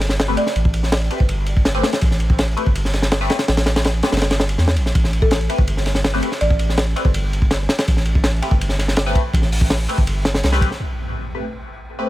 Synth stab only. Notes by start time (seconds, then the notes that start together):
0.28 A3 C4 G4 B4
1.10 A3 C4 G4 B4
1.75 A3 C4 G4 B4
2.57 A3 C4 G4 B4
3.21 A3 C4 G4 B4
4.03 A3 C4 G4 B4
5.49 A3 C4 G4 B4
6.14 A3 C4 G4 B4
6.96 A3 C4 G4 B4
8.42 A3 C4 G4 B4
9.06 A3 C4 G4 B4
9.89 A3 C4 G4 B4
10.53 A3 C4 G4 B4
11.35 A3 C4 G4 B4
11.99 A3 C4 G4 B4